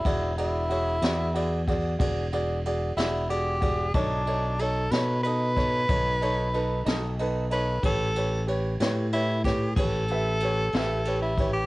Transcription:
<<
  \new Staff \with { instrumentName = "Upright piano" } { \time 12/8 \key b \dorian \tempo 4. = 62 <fis' gis' d''>8 <fis' gis' d''>8 <fis' gis' cis''>8 <fis' gis' d''>8 <fis' gis' d''>8 <fis' gis' d''>8 <fis' gis' d''>8 <fis' gis' d''>8 <fis' gis' d''>8 <fis' gis' d''>8 <fis' gis' d''>8 <fis' gis' d''>8 | <dis' a' cis''>8 <dis' a' cis''>8 <dis' a' cis''>8 <dis' a' cis''>8 <dis' a' dis''>8 <dis' a' cis''>8 <dis' a' cis''>8 <dis' a' cis''>8 <dis' a' b'>8 <dis' a' dis''>8 <dis' a' b'>8 <dis' a' cis''>8 | <g' b' cis''>8 <g' b' cis''>8 <g' b' cis''>8 <g' b' cis''>8 <g' b' cis''>8 <g' b' cis''>8 <g' b' cis''>8 <g' b' e''>8 <g' b' cis''>8 <g' b' e''>8 <g' b' cis''>8 <g' b' cis''>8 | }
  \new Staff \with { instrumentName = "Tenor saxophone" } { \time 12/8 \key b \dorian e'8 e'2 r2 e'8 g'4 | d'4 a'8 b'8 b'2. r8 b'8 | a'4 r4 e'8 g'8 a'2~ a'16 e'8 g'16 | }
  \new Staff \with { instrumentName = "Fingered electric bass" } { \clef bass \time 12/8 \key b \dorian e,,4. e,4. e,,4. e,,4. | b,,4. b,4. b,,4. b,,4. | a,,4. a,4. a,,4. a,,4. | }
  \new DrumStaff \with { instrumentName = "Drums" } \drummode { \time 12/8 <bd cymr>8 cymr8 cymr8 <cymr sn>8 cymr8 <bd cymr sn>8 <bd cymr>8 cymr8 cymr8 <cymr sn>8 cymr8 <bd cymr>8 | <bd cymr>8 cymr8 cymr8 <cymr sn>8 cymr8 <bd cymr sn>8 <bd cymr>8 cymr8 cymr8 <cymr sn>8 cymr8 cymr8 | <bd cymr>8 cymr8 cymr8 <cymr sn>8 cymr8 <bd cymr sn>8 <bd cymr>8 cymr8 cymr8 <cymr sn>8 cymr8 <bd cymr>8 | }
>>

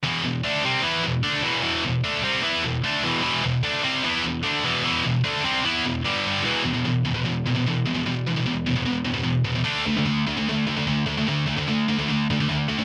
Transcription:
\new Staff \with { instrumentName = "Distorted electric guitar" } { \clef bass \time 4/4 \key e \minor \tempo 4 = 150 <e, b, e>8 <e, b,>8 <d a d'>8 <c g c'>8 <e b e'>8 <e, b,>8 <d a d'>8 <e, b, e>8 | <e, b, e>8 <e, b,>8 <d a d'>8 <c g c'>8 <e b e'>8 <e, b,>8 <d a d'>8 <e, b, e>8 | <e, b, e>8 <e, b,>8 <d a d'>8 <c g c'>8 <e b e'>8 <e, b,>8 <d a d'>8 <e, b, e>8 | <e, b, e>8 <e, b,>8 <d a d'>8 <c g c'>8 <e b e'>8 <e, b,>8 <g, d g>4 |
<e, b, e>8 <e, b,>16 <e, b,>16 <e, b,>8 <e, b,>16 <e, b,>16 <e, b,>8 <e, b,>16 <e, b,>16 <e, b,>8 <e, b,>16 <e, b,>16 | <e, b,>8 <e, b,>16 <e, b,>16 <e, b,>8 <e, b,>16 <e, b,>16 <e, b,>8 <e, b,>16 <e, b,>16 <e, b,>8 <e, b,>16 <e, b,>16 | <d a d'>8 <d a>16 <d a>16 <d a>8 <d a>16 <d a>16 <d a>8 <d a>16 <d a>16 <d a>8 <d a>16 <d a>16 | <d a>8 <d a>16 <d a>16 <d a>8 <d a>16 <d a>16 <d a>8 <d a>16 <d a>16 <d a>8 <d a>16 <d a>16 | }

